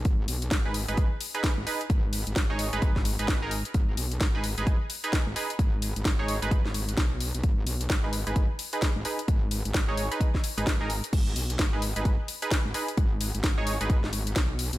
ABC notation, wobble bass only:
X:1
M:4/4
L:1/16
Q:"Swing 16ths" 1/4=130
K:G#m
V:1 name="Wobble bass" clef=bass
G,,,2 B,,,2 G,,,3 G,,,2 z4 G,,, z2 | G,,,3 G,,, G,,,3 G,,, G,,, G,,,2 G,,,4 z | G,,,2 B,,,2 G,,,3 G,,,2 z4 G,,, z2 | G,,,3 G,,, G,,,3 G,,,2 G,,,3 B,,,3 B,,, |
G,,,2 B,,,2 G,,,3 G,,,2 z4 G,,, z2 | G,,,3 G,,, G,,,3 z4 G,,,2 G,,,2 z | G,,,2 B,,,2 G,,,3 G,,,2 z4 G,,, z2 | G,,,3 G,,, G,,,3 G,,,2 G,,,3 B,,,3 B,,, |]